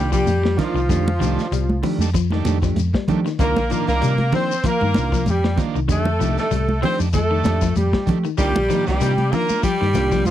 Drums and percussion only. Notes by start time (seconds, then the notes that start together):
0.12 kick, closed hi-hat, shekere
0.27 closed hi-hat, high conga, shekere
0.45 snare
0.58 kick, snare, closed hi-hat, low conga, shekere
0.77 shekere
0.89 kick, snare, closed hi-hat, high conga, shekere
1.08 high conga
1.21 snare, closed hi-hat, shekere
1.38 snare, closed hi-hat, shekere
1.52 closed hi-hat, high conga, shekere
1.69 high conga
1.83 open hi-hat, low conga, shekere
2.01 high conga, shekere
2.14 kick, closed hi-hat, high conga, low conga, shekere
2.30 snare, high conga
2.45 snare, closed hi-hat, high conga, shekere
2.62 kick, snare, closed hi-hat, shekere
2.76 closed hi-hat, high conga, shekere
2.94 kick, snare
3.08 kick, closed hi-hat, low conga, shekere
3.26 snare, closed hi-hat, shekere
3.39 kick, snare, closed hi-hat, high conga, low conga, shekere
3.56 snare, high conga
3.70 closed hi-hat, shekere
3.87 snare, closed hi-hat, shekere
4.02 closed hi-hat, high conga, shekere
4.18 closed hi-hat, high conga
4.32 open hi-hat, low conga, shekere
4.52 shekere
4.63 kick, snare, closed hi-hat, high conga, low conga, shekere
4.81 high conga
4.94 snare, closed hi-hat, high conga, shekere
5.12 kick, snare, closed hi-hat, shekere
5.26 closed hi-hat, high conga, shekere
5.44 snare
5.58 kick, snare, closed hi-hat, low conga, shekere
5.76 shekere
5.89 kick, closed hi-hat, high conga, low conga, shekere
6.05 high conga
6.21 snare, closed hi-hat, shekere
6.37 snare, closed hi-hat, shekere
6.51 closed hi-hat, high conga, shekere
6.69 high conga
6.82 open hi-hat, low conga, shekere
7.00 shekere
7.13 kick, snare, closed hi-hat, high conga, low conga, shekere
7.44 snare, closed hi-hat, high conga, shekere
7.62 kick, snare, closed hi-hat, shekere
7.76 closed hi-hat, high conga, shekere
7.93 kick, snare
8.07 kick, closed hi-hat, low conga, shekere
8.24 closed hi-hat, shekere
8.38 kick, closed hi-hat, high conga, shekere
8.56 high conga
8.70 snare, closed hi-hat, shekere
8.86 snare, closed hi-hat, shekere
9.01 snare, closed hi-hat, high conga, shekere
9.18 closed hi-hat, high conga
9.32 open hi-hat, low conga, shekere
9.49 high conga, shekere
9.63 kick, closed hi-hat, high conga, shekere
9.82 snare
9.94 snare, closed hi-hat, high conga, shekere
10.12 kick, snare, closed hi-hat, shekere
10.25 closed hi-hat, high conga, shekere